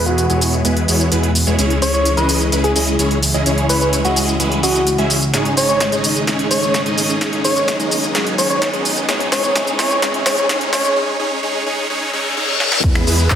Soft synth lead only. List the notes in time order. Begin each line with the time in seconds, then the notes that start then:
0.06 F#4
1.82 C#5
1.94 C#5
2.17 B4
2.64 G#4
2.76 G#4
3.70 B4
3.81 B4
4.05 F#4
4.63 F#4
5.57 C#5
5.69 C#5
6.51 C#5
6.62 C#5
7.45 C#5
7.56 C#5
8.38 C#5
8.50 C#5
9.32 C#5
9.44 C#5
9.79 C#5
9.91 C#5
10.26 C#5
10.37 C#5
10.73 C#5
10.84 C#5